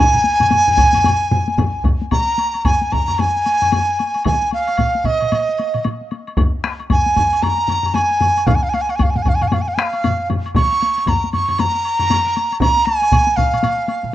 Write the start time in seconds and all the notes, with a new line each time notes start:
Already playing: G#5
0.13 taiko low-mid, taiko mid
0.24 taiko high
0.40 taiko low-mid, taiko mid, taiko high, high woodblock
0.51 taiko low-mid, taiko mid, taiko high, high woodblock
0.68 taiko low-mid, taiko mid
0.77 taiko, taiko low-mid, taiko mid, taiko high, high woodblock
0.93 taiko low-mid, taiko mid, taiko high, high woodblock
1.04 taiko low-mid, taiko mid, taiko high, high woodblock
1.31 taiko low-mid, taiko mid, taiko high
1.48 taiko high
1.58 taiko, taiko low-mid, taiko mid, taiko high, high woodblock
1.84 taiko, taiko low-mid, taiko mid, taiko high, high woodblock
2.02 taiko high
2.11 A#5, taiko, taiko high, high woodblock
2.28 taiko high
2.38 taiko high, high woodblock
2.54 taiko high, high woodblock
2.65 G#5, taiko, taiko low-mid, taiko high, high woodblock
2.82 taiko high
2.92 A#5, taiko, taiko low-mid, taiko high, high woodblock
3.08 taiko low-mid, taiko high, high woodblock
3.18 G#5, taiko low-mid, taiko high, high woodblock
3.36 taiko high
3.45 taiko high, high woodblock
3.62 taiko low-mid, taiko high, high woodblock
3.72 taiko low-mid, taiko high, high woodblock
3.89 taiko high
3.99 taiko high, high woodblock
4.14 taiko high, high woodblock
4.25 G#5, taiko, taiko high, high woodblock
4.42 taiko high
4.51 F5, taiko high, high woodblock
4.67 taiko high, high woodblock
4.77 taiko, taiko mid, taiko high, high woodblock
4.95 taiko high
5.04 D#5, taiko, taiko mid, taiko high, high woodblock
5.20 taiko mid, taiko high, high woodblock
5.32 taiko mid, taiko high, high woodblock
5.49 taiko high
5.58 taiko high, high woodblock
5.74 taiko mid, taiko high, high woodblock
5.84 taiko mid, taiko high, high woodblock
6.01 taiko high
6.11 taiko high, high woodblock
6.27 taiko high, high woodblock
6.37 taiko, taiko low-mid, taiko high, high woodblock
6.54 taiko high
6.64 taiko rim, taiko high, high woodblock
6.80 taiko high, high woodblock
6.90 G#5, taiko, taiko low-mid, taiko high, high woodblock
7.06 taiko high
7.16 taiko, taiko low-mid, taiko high, high woodblock
7.32 taiko high, high woodblock
7.43 A#5, taiko low-mid, taiko high, high woodblock
7.58 taiko high
7.68 taiko low-mid, taiko high, high woodblock
7.83 taiko low-mid, taiko high, high woodblock
7.94 G#5, taiko low-mid, taiko high, high woodblock
8.11 taiko high
8.21 taiko low-mid, taiko high, high woodblock
8.37 taiko high, high woodblock
8.47 F5, taiko, taiko low-mid, taiko mid, taiko high, high woodblock
8.55 G#5
8.63 F5, taiko high
8.69 G#5
8.73 F5, taiko high, high woodblock
8.81 G#5
8.89 F5, taiko high, high woodblock
8.96 G#5, taiko low-mid, taiko high, high woodblock
9.00 F5, taiko, taiko mid
9.10 G#5
9.15 F5, taiko low-mid, taiko mid, taiko high
9.22 G#5, taiko low-mid, taiko high, high woodblock
9.26 F5, taiko, taiko mid
9.35 G#5
9.41 F5, taiko low-mid, taiko mid, taiko high, high woodblock
9.48 G#5
9.52 F5, taiko low-mid, taiko mid, taiko high, high woodblock
9.62 G#5
9.68 F5, taiko high
9.74 G#5, taiko high, high woodblock
9.79 F5, taiko rim
9.93 taiko high, high woodblock
10.04 taiko low-mid, taiko mid, taiko high, high woodblock
10.20 taiko high
10.30 taiko low-mid, taiko mid, taiko high, high woodblock
10.46 taiko high, high woodblock
10.55 C#6, taiko, taiko high, high woodblock
10.72 taiko high
10.82 taiko high, high woodblock
10.97 taiko high, high woodblock
11.06 A#5, taiko, taiko low-mid, taiko high, high woodblock
11.24 taiko high
11.33 C#6, taiko low-mid, taiko high, high woodblock
11.49 taiko low-mid, taiko high, high woodblock
11.58 A#5, taiko low-mid, taiko high, high woodblock
11.75 taiko high
11.85 high woodblock
11.99 taiko low-mid, taiko high, high woodblock
12.10 taiko low-mid, taiko high, high woodblock
12.27 taiko high
12.36 taiko high, high woodblock
12.52 taiko high, high woodblock
12.60 A#5, taiko, taiko high, high woodblock
12.77 taiko high
12.85 G#5, taiko high, high woodblock
13.02 taiko high, high woodblock
13.12 taiko, taiko mid, taiko high, high woodblock
13.27 taiko high
13.36 F5, taiko, taiko mid, taiko high, high woodblock
13.53 taiko mid, taiko high, high woodblock
13.63 taiko mid, taiko high, high woodblock
13.78 taiko high
13.88 taiko high, high woodblock
14.03 taiko mid, taiko high